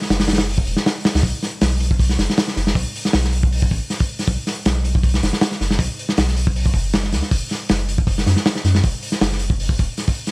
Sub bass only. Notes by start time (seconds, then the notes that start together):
0.10 F#1
0.67 E1
1.15 C#2
1.23 B1
1.62 B1
2.18 F#1
2.57 F#1
2.75 B1
3.14 B1
3.71 A1
4.28 B1
4.66 B1
5.23 F#1
5.61 F#1
5.79 B1
6.18 B1
6.74 F#1
7.13 D2
7.31 F#1
7.70 F#1
8.26 F#2
8.64 F#2
8.84 F#1
9.21 F#1
9.79 E1